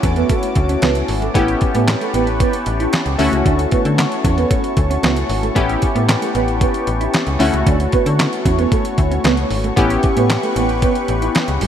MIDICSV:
0, 0, Header, 1, 7, 480
1, 0, Start_track
1, 0, Key_signature, 2, "major"
1, 0, Tempo, 526316
1, 1231, Time_signature, 4, 2, 24, 8
1, 10643, End_track
2, 0, Start_track
2, 0, Title_t, "Analog synth pad"
2, 0, Program_c, 0, 89
2, 0, Note_on_c, 0, 61, 67
2, 0, Note_on_c, 0, 66, 74
2, 0, Note_on_c, 0, 81, 68
2, 0, Note_on_c, 0, 86, 82
2, 1209, Note_off_c, 0, 61, 0
2, 1210, Note_off_c, 0, 66, 0
2, 1210, Note_off_c, 0, 86, 0
2, 1230, Note_on_c, 0, 71, 79
2, 1231, Note_on_c, 0, 67, 82
2, 1231, Note_on_c, 0, 85, 93
2, 2894, Note_off_c, 0, 67, 0
2, 2894, Note_off_c, 0, 71, 0
2, 2910, Note_on_c, 0, 73, 70
2, 2911, Note_on_c, 0, 66, 73
2, 5049, Note_off_c, 0, 66, 0
2, 5049, Note_off_c, 0, 73, 0
2, 5070, Note_on_c, 0, 67, 85
2, 5072, Note_on_c, 0, 71, 81
2, 6734, Note_off_c, 0, 67, 0
2, 6735, Note_off_c, 0, 71, 0
2, 6753, Note_on_c, 0, 66, 79
2, 6754, Note_on_c, 0, 73, 71
2, 8875, Note_off_c, 0, 85, 0
2, 8891, Note_off_c, 0, 66, 0
2, 8891, Note_off_c, 0, 73, 0
2, 8911, Note_on_c, 0, 71, 80
2, 8911, Note_on_c, 0, 85, 92
2, 8913, Note_on_c, 0, 67, 86
2, 10643, Note_off_c, 0, 67, 0
2, 10643, Note_off_c, 0, 71, 0
2, 10643, Note_off_c, 0, 81, 0
2, 10643, Note_off_c, 0, 85, 0
2, 10643, End_track
3, 0, Start_track
3, 0, Title_t, "Analog polysynth"
3, 0, Program_c, 1, 90
3, 0, Note_on_c, 1, 57, 80
3, 0, Note_on_c, 1, 61, 74
3, 0, Note_on_c, 1, 64, 73
3, 0, Note_on_c, 1, 66, 86
3, 1191, Note_off_c, 1, 57, 0
3, 1194, Note_off_c, 1, 61, 0
3, 1197, Note_off_c, 1, 64, 0
3, 1198, Note_off_c, 1, 66, 0
3, 1224, Note_on_c, 1, 59, 78
3, 1230, Note_on_c, 1, 61, 72
3, 1235, Note_on_c, 1, 64, 73
3, 1241, Note_on_c, 1, 67, 89
3, 2874, Note_off_c, 1, 59, 0
3, 2877, Note_off_c, 1, 61, 0
3, 2880, Note_off_c, 1, 64, 0
3, 2883, Note_off_c, 1, 67, 0
3, 2904, Note_on_c, 1, 57, 81
3, 2909, Note_on_c, 1, 61, 72
3, 2915, Note_on_c, 1, 64, 73
3, 2918, Note_on_c, 1, 66, 89
3, 5031, Note_off_c, 1, 57, 0
3, 5034, Note_off_c, 1, 61, 0
3, 5037, Note_off_c, 1, 64, 0
3, 5038, Note_off_c, 1, 66, 0
3, 5063, Note_on_c, 1, 59, 81
3, 5068, Note_on_c, 1, 61, 72
3, 5073, Note_on_c, 1, 64, 73
3, 5078, Note_on_c, 1, 67, 88
3, 6713, Note_off_c, 1, 59, 0
3, 6716, Note_off_c, 1, 61, 0
3, 6719, Note_off_c, 1, 64, 0
3, 6721, Note_off_c, 1, 67, 0
3, 6741, Note_on_c, 1, 57, 82
3, 6746, Note_on_c, 1, 61, 71
3, 6750, Note_on_c, 1, 64, 72
3, 6756, Note_on_c, 1, 66, 87
3, 8870, Note_off_c, 1, 57, 0
3, 8872, Note_off_c, 1, 61, 0
3, 8874, Note_off_c, 1, 64, 0
3, 8877, Note_off_c, 1, 66, 0
3, 8904, Note_on_c, 1, 59, 79
3, 8910, Note_on_c, 1, 61, 75
3, 8914, Note_on_c, 1, 64, 73
3, 8919, Note_on_c, 1, 67, 91
3, 10643, Note_off_c, 1, 59, 0
3, 10643, Note_off_c, 1, 61, 0
3, 10643, Note_off_c, 1, 64, 0
3, 10643, Note_off_c, 1, 67, 0
3, 10643, End_track
4, 0, Start_track
4, 0, Title_t, "Clean electric guitar"
4, 0, Program_c, 2, 27
4, 31, Note_on_c, 2, 61, 76
4, 131, Note_off_c, 2, 61, 0
4, 151, Note_on_c, 2, 59, 83
4, 251, Note_off_c, 2, 59, 0
4, 270, Note_on_c, 2, 57, 84
4, 370, Note_off_c, 2, 57, 0
4, 631, Note_on_c, 2, 61, 74
4, 731, Note_off_c, 2, 61, 0
4, 750, Note_on_c, 2, 59, 83
4, 850, Note_off_c, 2, 59, 0
4, 1112, Note_on_c, 2, 57, 68
4, 1212, Note_off_c, 2, 57, 0
4, 1231, Note_on_c, 2, 57, 70
4, 1331, Note_off_c, 2, 57, 0
4, 1591, Note_on_c, 2, 59, 66
4, 1691, Note_off_c, 2, 59, 0
4, 1831, Note_on_c, 2, 57, 67
4, 1931, Note_off_c, 2, 57, 0
4, 1952, Note_on_c, 2, 59, 79
4, 2052, Note_off_c, 2, 59, 0
4, 2190, Note_on_c, 2, 59, 81
4, 2291, Note_off_c, 2, 59, 0
4, 2552, Note_on_c, 2, 64, 74
4, 2652, Note_off_c, 2, 64, 0
4, 2910, Note_on_c, 2, 61, 68
4, 3011, Note_off_c, 2, 61, 0
4, 3151, Note_on_c, 2, 62, 82
4, 3251, Note_off_c, 2, 62, 0
4, 3391, Note_on_c, 2, 59, 84
4, 3491, Note_off_c, 2, 59, 0
4, 3871, Note_on_c, 2, 61, 76
4, 3971, Note_off_c, 2, 61, 0
4, 3990, Note_on_c, 2, 59, 78
4, 4091, Note_off_c, 2, 59, 0
4, 4109, Note_on_c, 2, 57, 86
4, 4210, Note_off_c, 2, 57, 0
4, 4471, Note_on_c, 2, 61, 76
4, 4571, Note_off_c, 2, 61, 0
4, 4589, Note_on_c, 2, 59, 81
4, 4690, Note_off_c, 2, 59, 0
4, 4949, Note_on_c, 2, 57, 65
4, 5050, Note_off_c, 2, 57, 0
4, 5068, Note_on_c, 2, 57, 70
4, 5169, Note_off_c, 2, 57, 0
4, 5427, Note_on_c, 2, 59, 71
4, 5529, Note_off_c, 2, 59, 0
4, 5669, Note_on_c, 2, 57, 73
4, 5770, Note_off_c, 2, 57, 0
4, 5791, Note_on_c, 2, 59, 80
4, 5891, Note_off_c, 2, 59, 0
4, 6031, Note_on_c, 2, 59, 75
4, 6131, Note_off_c, 2, 59, 0
4, 6390, Note_on_c, 2, 64, 74
4, 6490, Note_off_c, 2, 64, 0
4, 6750, Note_on_c, 2, 61, 68
4, 6851, Note_off_c, 2, 61, 0
4, 6991, Note_on_c, 2, 62, 85
4, 7091, Note_off_c, 2, 62, 0
4, 7232, Note_on_c, 2, 59, 86
4, 7331, Note_off_c, 2, 59, 0
4, 7711, Note_on_c, 2, 61, 73
4, 7811, Note_off_c, 2, 61, 0
4, 7832, Note_on_c, 2, 59, 82
4, 7932, Note_off_c, 2, 59, 0
4, 7950, Note_on_c, 2, 57, 89
4, 8051, Note_off_c, 2, 57, 0
4, 8308, Note_on_c, 2, 61, 70
4, 8409, Note_off_c, 2, 61, 0
4, 8429, Note_on_c, 2, 59, 84
4, 8530, Note_off_c, 2, 59, 0
4, 8789, Note_on_c, 2, 57, 68
4, 8890, Note_off_c, 2, 57, 0
4, 8911, Note_on_c, 2, 57, 71
4, 9011, Note_off_c, 2, 57, 0
4, 9272, Note_on_c, 2, 59, 68
4, 9371, Note_off_c, 2, 59, 0
4, 9512, Note_on_c, 2, 57, 75
4, 9611, Note_off_c, 2, 57, 0
4, 9632, Note_on_c, 2, 59, 79
4, 9731, Note_off_c, 2, 59, 0
4, 9872, Note_on_c, 2, 59, 75
4, 9972, Note_off_c, 2, 59, 0
4, 10234, Note_on_c, 2, 64, 74
4, 10333, Note_off_c, 2, 64, 0
4, 10593, Note_on_c, 2, 55, 69
4, 10643, Note_off_c, 2, 55, 0
4, 10643, End_track
5, 0, Start_track
5, 0, Title_t, "FM bass"
5, 0, Program_c, 3, 39
5, 30, Note_on_c, 3, 40, 107
5, 220, Note_off_c, 3, 40, 0
5, 510, Note_on_c, 3, 38, 96
5, 700, Note_off_c, 3, 38, 0
5, 753, Note_on_c, 3, 37, 98
5, 942, Note_off_c, 3, 37, 0
5, 993, Note_on_c, 3, 32, 95
5, 1182, Note_off_c, 3, 32, 0
5, 1232, Note_on_c, 3, 33, 105
5, 1421, Note_off_c, 3, 33, 0
5, 1593, Note_on_c, 3, 45, 103
5, 1782, Note_off_c, 3, 45, 0
5, 1952, Note_on_c, 3, 33, 95
5, 2236, Note_off_c, 3, 33, 0
5, 2433, Note_on_c, 3, 33, 92
5, 2622, Note_off_c, 3, 33, 0
5, 2791, Note_on_c, 3, 37, 88
5, 2886, Note_off_c, 3, 37, 0
5, 2910, Note_on_c, 3, 38, 106
5, 3006, Note_off_c, 3, 38, 0
5, 3032, Note_on_c, 3, 37, 88
5, 3126, Note_off_c, 3, 37, 0
5, 3152, Note_on_c, 3, 38, 113
5, 3341, Note_off_c, 3, 38, 0
5, 3512, Note_on_c, 3, 50, 104
5, 3701, Note_off_c, 3, 50, 0
5, 3872, Note_on_c, 3, 40, 101
5, 4061, Note_off_c, 3, 40, 0
5, 4350, Note_on_c, 3, 38, 98
5, 4540, Note_off_c, 3, 38, 0
5, 4591, Note_on_c, 3, 37, 96
5, 4781, Note_off_c, 3, 37, 0
5, 4830, Note_on_c, 3, 32, 96
5, 5020, Note_off_c, 3, 32, 0
5, 5072, Note_on_c, 3, 33, 113
5, 5261, Note_off_c, 3, 33, 0
5, 5430, Note_on_c, 3, 45, 96
5, 5620, Note_off_c, 3, 45, 0
5, 5792, Note_on_c, 3, 33, 94
5, 6076, Note_off_c, 3, 33, 0
5, 6271, Note_on_c, 3, 33, 85
5, 6461, Note_off_c, 3, 33, 0
5, 6631, Note_on_c, 3, 37, 85
5, 6726, Note_off_c, 3, 37, 0
5, 6751, Note_on_c, 3, 38, 102
5, 6846, Note_off_c, 3, 38, 0
5, 6871, Note_on_c, 3, 37, 86
5, 6966, Note_off_c, 3, 37, 0
5, 6991, Note_on_c, 3, 38, 118
5, 7181, Note_off_c, 3, 38, 0
5, 7351, Note_on_c, 3, 50, 104
5, 7541, Note_off_c, 3, 50, 0
5, 7711, Note_on_c, 3, 40, 96
5, 7901, Note_off_c, 3, 40, 0
5, 8190, Note_on_c, 3, 38, 102
5, 8380, Note_off_c, 3, 38, 0
5, 8431, Note_on_c, 3, 37, 97
5, 8621, Note_off_c, 3, 37, 0
5, 8670, Note_on_c, 3, 32, 91
5, 8860, Note_off_c, 3, 32, 0
5, 8912, Note_on_c, 3, 33, 116
5, 9101, Note_off_c, 3, 33, 0
5, 9272, Note_on_c, 3, 45, 95
5, 9461, Note_off_c, 3, 45, 0
5, 9631, Note_on_c, 3, 33, 93
5, 9916, Note_off_c, 3, 33, 0
5, 10112, Note_on_c, 3, 33, 98
5, 10302, Note_off_c, 3, 33, 0
5, 10473, Note_on_c, 3, 37, 88
5, 10567, Note_off_c, 3, 37, 0
5, 10593, Note_on_c, 3, 31, 100
5, 10643, Note_off_c, 3, 31, 0
5, 10643, End_track
6, 0, Start_track
6, 0, Title_t, "Muted clean electric guitar strokes"
6, 510, Note_on_c, 9, 29, 43
6, 601, Note_off_c, 9, 29, 0
6, 869, Note_on_c, 9, 29, 42
6, 960, Note_off_c, 9, 29, 0
6, 1471, Note_on_c, 9, 29, 45
6, 1562, Note_off_c, 9, 29, 0
6, 1711, Note_on_c, 9, 29, 48
6, 1802, Note_off_c, 9, 29, 0
6, 2432, Note_on_c, 9, 29, 44
6, 2524, Note_off_c, 9, 29, 0
6, 3271, Note_on_c, 9, 29, 45
6, 3362, Note_off_c, 9, 29, 0
6, 3632, Note_on_c, 9, 29, 43
6, 3724, Note_off_c, 9, 29, 0
6, 4349, Note_on_c, 9, 29, 44
6, 4441, Note_off_c, 9, 29, 0
6, 4707, Note_on_c, 9, 29, 44
6, 4798, Note_off_c, 9, 29, 0
6, 5308, Note_on_c, 9, 29, 44
6, 5399, Note_off_c, 9, 29, 0
6, 5548, Note_on_c, 9, 29, 43
6, 5639, Note_off_c, 9, 29, 0
6, 6270, Note_on_c, 9, 29, 43
6, 6361, Note_off_c, 9, 29, 0
6, 7111, Note_on_c, 9, 29, 42
6, 7202, Note_off_c, 9, 29, 0
6, 7471, Note_on_c, 9, 29, 44
6, 7562, Note_off_c, 9, 29, 0
6, 8189, Note_on_c, 9, 29, 43
6, 8280, Note_off_c, 9, 29, 0
6, 8548, Note_on_c, 9, 29, 46
6, 8640, Note_off_c, 9, 29, 0
6, 9151, Note_on_c, 9, 29, 47
6, 9242, Note_off_c, 9, 29, 0
6, 9392, Note_on_c, 9, 29, 46
6, 9483, Note_off_c, 9, 29, 0
6, 10112, Note_on_c, 9, 29, 43
6, 10203, Note_off_c, 9, 29, 0
6, 10643, End_track
7, 0, Start_track
7, 0, Title_t, "Drums"
7, 29, Note_on_c, 9, 42, 74
7, 30, Note_on_c, 9, 36, 102
7, 120, Note_off_c, 9, 42, 0
7, 122, Note_off_c, 9, 36, 0
7, 147, Note_on_c, 9, 42, 45
7, 238, Note_off_c, 9, 42, 0
7, 268, Note_on_c, 9, 42, 92
7, 270, Note_on_c, 9, 36, 101
7, 360, Note_off_c, 9, 42, 0
7, 361, Note_off_c, 9, 36, 0
7, 390, Note_on_c, 9, 42, 54
7, 481, Note_off_c, 9, 42, 0
7, 506, Note_on_c, 9, 42, 83
7, 510, Note_on_c, 9, 36, 88
7, 597, Note_off_c, 9, 42, 0
7, 601, Note_off_c, 9, 36, 0
7, 631, Note_on_c, 9, 42, 49
7, 723, Note_off_c, 9, 42, 0
7, 748, Note_on_c, 9, 42, 85
7, 756, Note_on_c, 9, 38, 106
7, 759, Note_on_c, 9, 39, 81
7, 839, Note_off_c, 9, 42, 0
7, 847, Note_off_c, 9, 38, 0
7, 850, Note_off_c, 9, 39, 0
7, 868, Note_on_c, 9, 42, 50
7, 959, Note_off_c, 9, 42, 0
7, 989, Note_on_c, 9, 46, 77
7, 1080, Note_off_c, 9, 46, 0
7, 1114, Note_on_c, 9, 42, 41
7, 1205, Note_off_c, 9, 42, 0
7, 1232, Note_on_c, 9, 36, 96
7, 1233, Note_on_c, 9, 42, 93
7, 1323, Note_off_c, 9, 36, 0
7, 1324, Note_off_c, 9, 42, 0
7, 1353, Note_on_c, 9, 42, 50
7, 1444, Note_off_c, 9, 42, 0
7, 1467, Note_on_c, 9, 42, 66
7, 1474, Note_on_c, 9, 36, 95
7, 1558, Note_off_c, 9, 42, 0
7, 1566, Note_off_c, 9, 36, 0
7, 1592, Note_on_c, 9, 42, 54
7, 1684, Note_off_c, 9, 42, 0
7, 1714, Note_on_c, 9, 42, 93
7, 1715, Note_on_c, 9, 38, 110
7, 1718, Note_on_c, 9, 39, 87
7, 1805, Note_off_c, 9, 42, 0
7, 1806, Note_off_c, 9, 38, 0
7, 1809, Note_off_c, 9, 39, 0
7, 1837, Note_on_c, 9, 42, 53
7, 1928, Note_off_c, 9, 42, 0
7, 1953, Note_on_c, 9, 42, 70
7, 2044, Note_off_c, 9, 42, 0
7, 2071, Note_on_c, 9, 42, 42
7, 2162, Note_off_c, 9, 42, 0
7, 2191, Note_on_c, 9, 36, 109
7, 2191, Note_on_c, 9, 42, 88
7, 2282, Note_off_c, 9, 36, 0
7, 2282, Note_off_c, 9, 42, 0
7, 2310, Note_on_c, 9, 42, 53
7, 2402, Note_off_c, 9, 42, 0
7, 2427, Note_on_c, 9, 42, 78
7, 2518, Note_off_c, 9, 42, 0
7, 2554, Note_on_c, 9, 42, 48
7, 2645, Note_off_c, 9, 42, 0
7, 2670, Note_on_c, 9, 42, 81
7, 2678, Note_on_c, 9, 38, 110
7, 2680, Note_on_c, 9, 39, 92
7, 2761, Note_off_c, 9, 42, 0
7, 2769, Note_off_c, 9, 38, 0
7, 2771, Note_off_c, 9, 39, 0
7, 2788, Note_on_c, 9, 42, 51
7, 2879, Note_off_c, 9, 42, 0
7, 2909, Note_on_c, 9, 46, 77
7, 3000, Note_off_c, 9, 46, 0
7, 3035, Note_on_c, 9, 42, 44
7, 3126, Note_off_c, 9, 42, 0
7, 3152, Note_on_c, 9, 36, 98
7, 3153, Note_on_c, 9, 42, 83
7, 3243, Note_off_c, 9, 36, 0
7, 3245, Note_off_c, 9, 42, 0
7, 3274, Note_on_c, 9, 42, 50
7, 3365, Note_off_c, 9, 42, 0
7, 3388, Note_on_c, 9, 42, 70
7, 3395, Note_on_c, 9, 36, 91
7, 3479, Note_off_c, 9, 42, 0
7, 3486, Note_off_c, 9, 36, 0
7, 3513, Note_on_c, 9, 42, 56
7, 3605, Note_off_c, 9, 42, 0
7, 3636, Note_on_c, 9, 42, 93
7, 3637, Note_on_c, 9, 38, 107
7, 3639, Note_on_c, 9, 39, 89
7, 3727, Note_off_c, 9, 42, 0
7, 3728, Note_off_c, 9, 38, 0
7, 3731, Note_off_c, 9, 39, 0
7, 3756, Note_on_c, 9, 42, 54
7, 3847, Note_off_c, 9, 42, 0
7, 3872, Note_on_c, 9, 36, 106
7, 3873, Note_on_c, 9, 42, 78
7, 3963, Note_off_c, 9, 36, 0
7, 3964, Note_off_c, 9, 42, 0
7, 3992, Note_on_c, 9, 42, 41
7, 4083, Note_off_c, 9, 42, 0
7, 4110, Note_on_c, 9, 42, 83
7, 4111, Note_on_c, 9, 36, 110
7, 4201, Note_off_c, 9, 42, 0
7, 4202, Note_off_c, 9, 36, 0
7, 4231, Note_on_c, 9, 42, 52
7, 4322, Note_off_c, 9, 42, 0
7, 4348, Note_on_c, 9, 42, 81
7, 4350, Note_on_c, 9, 36, 83
7, 4439, Note_off_c, 9, 42, 0
7, 4441, Note_off_c, 9, 36, 0
7, 4476, Note_on_c, 9, 42, 50
7, 4567, Note_off_c, 9, 42, 0
7, 4590, Note_on_c, 9, 42, 82
7, 4598, Note_on_c, 9, 38, 108
7, 4601, Note_on_c, 9, 39, 82
7, 4681, Note_off_c, 9, 42, 0
7, 4689, Note_off_c, 9, 38, 0
7, 4692, Note_off_c, 9, 39, 0
7, 4710, Note_on_c, 9, 42, 49
7, 4801, Note_off_c, 9, 42, 0
7, 4829, Note_on_c, 9, 46, 82
7, 4920, Note_off_c, 9, 46, 0
7, 4954, Note_on_c, 9, 42, 46
7, 5045, Note_off_c, 9, 42, 0
7, 5071, Note_on_c, 9, 36, 106
7, 5072, Note_on_c, 9, 42, 84
7, 5162, Note_off_c, 9, 36, 0
7, 5163, Note_off_c, 9, 42, 0
7, 5193, Note_on_c, 9, 42, 53
7, 5284, Note_off_c, 9, 42, 0
7, 5307, Note_on_c, 9, 42, 66
7, 5314, Note_on_c, 9, 36, 93
7, 5398, Note_off_c, 9, 42, 0
7, 5405, Note_off_c, 9, 36, 0
7, 5433, Note_on_c, 9, 42, 55
7, 5524, Note_off_c, 9, 42, 0
7, 5554, Note_on_c, 9, 42, 98
7, 5555, Note_on_c, 9, 38, 107
7, 5557, Note_on_c, 9, 39, 86
7, 5645, Note_off_c, 9, 42, 0
7, 5646, Note_off_c, 9, 38, 0
7, 5649, Note_off_c, 9, 39, 0
7, 5675, Note_on_c, 9, 42, 59
7, 5766, Note_off_c, 9, 42, 0
7, 5791, Note_on_c, 9, 42, 71
7, 5882, Note_off_c, 9, 42, 0
7, 5909, Note_on_c, 9, 42, 44
7, 6001, Note_off_c, 9, 42, 0
7, 6029, Note_on_c, 9, 36, 104
7, 6029, Note_on_c, 9, 42, 87
7, 6120, Note_off_c, 9, 42, 0
7, 6121, Note_off_c, 9, 36, 0
7, 6149, Note_on_c, 9, 42, 53
7, 6241, Note_off_c, 9, 42, 0
7, 6267, Note_on_c, 9, 42, 77
7, 6358, Note_off_c, 9, 42, 0
7, 6393, Note_on_c, 9, 42, 53
7, 6484, Note_off_c, 9, 42, 0
7, 6508, Note_on_c, 9, 42, 88
7, 6516, Note_on_c, 9, 38, 99
7, 6518, Note_on_c, 9, 39, 91
7, 6599, Note_off_c, 9, 42, 0
7, 6607, Note_off_c, 9, 38, 0
7, 6610, Note_off_c, 9, 39, 0
7, 6627, Note_on_c, 9, 42, 48
7, 6718, Note_off_c, 9, 42, 0
7, 6748, Note_on_c, 9, 46, 81
7, 6839, Note_off_c, 9, 46, 0
7, 6873, Note_on_c, 9, 42, 45
7, 6964, Note_off_c, 9, 42, 0
7, 6991, Note_on_c, 9, 36, 105
7, 6992, Note_on_c, 9, 42, 89
7, 7082, Note_off_c, 9, 36, 0
7, 7083, Note_off_c, 9, 42, 0
7, 7113, Note_on_c, 9, 42, 54
7, 7204, Note_off_c, 9, 42, 0
7, 7227, Note_on_c, 9, 42, 63
7, 7234, Note_on_c, 9, 36, 93
7, 7318, Note_off_c, 9, 42, 0
7, 7325, Note_off_c, 9, 36, 0
7, 7353, Note_on_c, 9, 42, 58
7, 7444, Note_off_c, 9, 42, 0
7, 7475, Note_on_c, 9, 42, 98
7, 7476, Note_on_c, 9, 38, 111
7, 7479, Note_on_c, 9, 39, 84
7, 7566, Note_off_c, 9, 42, 0
7, 7567, Note_off_c, 9, 38, 0
7, 7570, Note_off_c, 9, 39, 0
7, 7595, Note_on_c, 9, 42, 58
7, 7687, Note_off_c, 9, 42, 0
7, 7711, Note_on_c, 9, 36, 102
7, 7712, Note_on_c, 9, 42, 73
7, 7802, Note_off_c, 9, 36, 0
7, 7803, Note_off_c, 9, 42, 0
7, 7830, Note_on_c, 9, 42, 46
7, 7921, Note_off_c, 9, 42, 0
7, 7951, Note_on_c, 9, 36, 111
7, 7951, Note_on_c, 9, 42, 82
7, 8042, Note_off_c, 9, 36, 0
7, 8042, Note_off_c, 9, 42, 0
7, 8070, Note_on_c, 9, 42, 54
7, 8161, Note_off_c, 9, 42, 0
7, 8188, Note_on_c, 9, 42, 74
7, 8190, Note_on_c, 9, 36, 86
7, 8279, Note_off_c, 9, 42, 0
7, 8281, Note_off_c, 9, 36, 0
7, 8313, Note_on_c, 9, 42, 51
7, 8405, Note_off_c, 9, 42, 0
7, 8429, Note_on_c, 9, 42, 84
7, 8437, Note_on_c, 9, 38, 105
7, 8439, Note_on_c, 9, 39, 88
7, 8520, Note_off_c, 9, 42, 0
7, 8528, Note_off_c, 9, 38, 0
7, 8531, Note_off_c, 9, 39, 0
7, 8548, Note_on_c, 9, 42, 51
7, 8639, Note_off_c, 9, 42, 0
7, 8669, Note_on_c, 9, 46, 73
7, 8760, Note_off_c, 9, 46, 0
7, 8793, Note_on_c, 9, 42, 45
7, 8885, Note_off_c, 9, 42, 0
7, 8911, Note_on_c, 9, 36, 106
7, 8911, Note_on_c, 9, 42, 92
7, 9002, Note_off_c, 9, 36, 0
7, 9002, Note_off_c, 9, 42, 0
7, 9032, Note_on_c, 9, 42, 54
7, 9123, Note_off_c, 9, 42, 0
7, 9147, Note_on_c, 9, 42, 68
7, 9154, Note_on_c, 9, 36, 99
7, 9238, Note_off_c, 9, 42, 0
7, 9245, Note_off_c, 9, 36, 0
7, 9272, Note_on_c, 9, 42, 60
7, 9363, Note_off_c, 9, 42, 0
7, 9394, Note_on_c, 9, 42, 91
7, 9395, Note_on_c, 9, 38, 107
7, 9397, Note_on_c, 9, 39, 86
7, 9485, Note_off_c, 9, 42, 0
7, 9486, Note_off_c, 9, 38, 0
7, 9489, Note_off_c, 9, 39, 0
7, 9515, Note_on_c, 9, 42, 58
7, 9606, Note_off_c, 9, 42, 0
7, 9632, Note_on_c, 9, 42, 74
7, 9724, Note_off_c, 9, 42, 0
7, 9750, Note_on_c, 9, 42, 44
7, 9841, Note_off_c, 9, 42, 0
7, 9870, Note_on_c, 9, 42, 90
7, 9871, Note_on_c, 9, 36, 100
7, 9961, Note_off_c, 9, 42, 0
7, 9962, Note_off_c, 9, 36, 0
7, 9990, Note_on_c, 9, 42, 57
7, 10081, Note_off_c, 9, 42, 0
7, 10108, Note_on_c, 9, 42, 77
7, 10199, Note_off_c, 9, 42, 0
7, 10233, Note_on_c, 9, 42, 48
7, 10325, Note_off_c, 9, 42, 0
7, 10350, Note_on_c, 9, 42, 85
7, 10358, Note_on_c, 9, 38, 106
7, 10360, Note_on_c, 9, 39, 79
7, 10441, Note_off_c, 9, 42, 0
7, 10449, Note_off_c, 9, 38, 0
7, 10452, Note_off_c, 9, 39, 0
7, 10469, Note_on_c, 9, 42, 52
7, 10560, Note_off_c, 9, 42, 0
7, 10590, Note_on_c, 9, 46, 76
7, 10643, Note_off_c, 9, 46, 0
7, 10643, End_track
0, 0, End_of_file